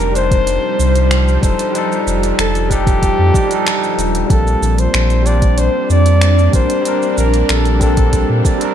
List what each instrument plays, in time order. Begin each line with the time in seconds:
Already playing: sub bass F1, ambient pad F3 G3, tine electric piano G3 D4 D#4 A5, flugelhorn A#4
0.00 closed hi-hat, cabasa
0.12 tine electric piano G3 D4, closed hi-hat
0.16 tine electric piano D#4 C5, flugelhorn C5, cabasa
0.31 kick, closed hi-hat, cabasa
0.47 closed hi-hat, cabasa
0.79 sub bass C2, cabasa
0.95 closed hi-hat, cabasa
1.11 finger snap, closed hi-hat, cabasa
1.28 cabasa
1.41 sub bass F1, tine electric piano G3 D4 D#4 A4, flugelhorn C5, kick, closed hi-hat, cabasa
1.59 closed hi-hat, cabasa
1.71 tine electric piano G3 D4, closed hi-hat
1.76 tine electric piano D#4 A4, cabasa
1.92 cabasa
2.06 sub bass F1, cabasa
2.23 closed hi-hat, cabasa
2.38 sub bass F1, flugelhorn A4, finger snap, closed hi-hat, cabasa
2.55 closed hi-hat, cabasa
2.69 tine electric piano G3 D4 D#4 A4, flugelhorn G4, kick, closed hi-hat, cabasa
2.87 kick, closed hi-hat, cabasa
3.02 kick, closed hi-hat, cabasa
3.19 sub bass F2
3.32 tine electric piano G3 D4 D#4 D5, kick, cabasa
3.47 tine electric piano G3 D4, closed hi-hat
3.52 tine electric piano D#4 A4, cabasa
3.67 finger snap, closed hi-hat, cabasa
3.84 cabasa
3.98 sub bass D#1, closed hi-hat, cabasa
4.15 closed hi-hat, cabasa
4.27 sub bass A#1, tine electric piano G3 C4, ambient pad G3 A#3 D4, kick, closed hi-hat
4.31 tine electric piano A#3 D4, flugelhorn A4, cabasa
4.47 cabasa
4.62 sub bass A#1, cabasa
4.78 flugelhorn C5, closed hi-hat, cabasa
4.94 sub bass A#1, finger snap, closed hi-hat, cabasa
5.10 closed hi-hat, cabasa
5.22 tine electric piano G3 C4, closed hi-hat
5.27 tine electric piano D4 C5, flugelhorn D5, cabasa
5.42 kick, closed hi-hat, cabasa
5.58 flugelhorn C5, closed hi-hat, cabasa
5.90 sub bass F2, flugelhorn D5, cabasa
6.06 closed hi-hat, cabasa
6.21 finger snap, closed hi-hat, cabasa
6.39 cabasa
6.52 sub bass A#1, tine electric piano G3 C4 D4 A#4, flugelhorn C5, kick, closed hi-hat, cabasa
6.70 closed hi-hat, cabasa
6.82 tine electric piano G3 C4, closed hi-hat
6.86 tine electric piano D4 A#4, cabasa
7.02 cabasa
7.17 sub bass A#1, flugelhorn A#4, cabasa
7.34 closed hi-hat, cabasa
7.49 sub bass A#1, flugelhorn A4, finger snap, closed hi-hat, cabasa
7.65 closed hi-hat, cabasa
7.79 tine electric piano G3 A#3 C4 D4, flugelhorn A4, kick, closed hi-hat, cabasa
7.97 kick, closed hi-hat, cabasa
8.13 kick, closed hi-hat, cabasa
8.29 sub bass A#2
8.43 tine electric piano G3 C4 D4 D5, kick, cabasa
8.58 tine electric piano G3 C4, closed hi-hat, cabasa
8.62 tine electric piano D4 A#4